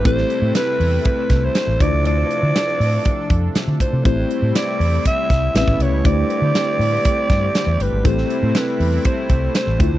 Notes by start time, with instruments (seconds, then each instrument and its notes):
Already playing: analog synth pad G3 A3
0.04 fingered electric bass A1, analog synth pad C3 C4 E4, tine electric piano A3 C4 E4 G4 A4, alto saxophone C5, kick, closed hi-hat
0.18 snare
0.30 closed hi-hat
0.42 fingered electric bass A2
0.55 alto saxophone B4, snare, closed hi-hat
0.80 fingered electric bass E2, open hi-hat
1.05 alto saxophone B4, kick, closed hi-hat
1.30 fingered electric bass C2, kick, snare, closed hi-hat
1.45 alto saxophone C5
1.55 snare, closed hi-hat
1.67 fingered electric bass A1
1.79 fingered electric bass D2, analog synth pad F3 D4 A4, tine electric piano A3 D4 E4 F4 C5, alto saxophone D5, kick, closed hi-hat
1.93 fingered electric bass C#2
2.05 fingered electric bass D2, alto saxophone D5, closed hi-hat
2.31 closed hi-hat
2.43 fingered electric bass D3
2.56 snare, closed hi-hat
2.80 fingered electric bass A2, open hi-hat
3.05 kick, closed hi-hat
3.30 fingered electric bass F2, kick, closed hi-hat
3.55 muted fingered electric bass stroke, snare, closed hi-hat
3.68 fingered electric bass D3
3.80 alto saxophone C5, kick, closed hi-hat
3.93 fingered electric bass C3
4.04 fingered electric bass A1, analog synth pad G3 A3 C4 E4, tine electric piano A3 C4 E4 G4 C5, alto saxophone C5, kick, closed hi-hat
4.31 closed hi-hat
4.42 fingered electric bass A2
4.55 alto saxophone D5, snare, closed hi-hat
4.80 fingered electric bass E2, open hi-hat
5.05 alto saxophone E5, kick, closed hi-hat
5.30 fingered electric bass C2, kick, snare, closed hi-hat
5.54 fingered electric bass A1, analog synth pad C#3 B3 E4, tine electric piano A3 C4 E4 G4 B4, alto saxophone E5, snare, closed hi-hat
5.61 tine electric piano C#4
5.68 fingered electric bass A1, kick
5.79 fingered electric bass C2, alto saxophone C#5, closed hi-hat
5.92 fingered electric bass C#2
6.04 fingered electric bass D2, analog synth pad D3 G3 C4 G4, tine electric piano A3 D4 E4 G4 C5, alto saxophone D5, kick, closed hi-hat
6.30 closed hi-hat
6.42 fingered electric bass D3
6.55 snare, closed hi-hat
6.79 fingered electric bass A2, open hi-hat
7.05 kick, closed hi-hat
7.30 fingered electric bass G2, kick, snare, closed hi-hat
7.55 snare, closed hi-hat
7.67 fingered electric bass E2
7.79 fingered electric bass G1, alto saxophone B4, closed hi-hat
7.92 fingered electric bass G#1
8.04 fingered electric bass A1, analog synth pad C3 A3 C4 E4, tine electric piano A3 B3 E4 G4 A4, alto saxophone C5, kick, closed hi-hat
8.10 tine electric piano C4
8.18 snare
8.30 closed hi-hat
8.43 fingered electric bass A2
8.55 alto saxophone B4, snare, closed hi-hat
8.80 fingered electric bass E2, open hi-hat
9.05 alto saxophone C5, kick, closed hi-hat
9.30 fingered electric bass C2, kick, closed hi-hat
9.55 alto saxophone C5, snare, closed hi-hat
9.67 fingered electric bass A1
9.79 fingered electric bass D2, analog synth pad D3 F3 C4 D4, tine electric piano A3 D4 E4 F4 C5, kick, closed hi-hat
9.93 fingered electric bass C#2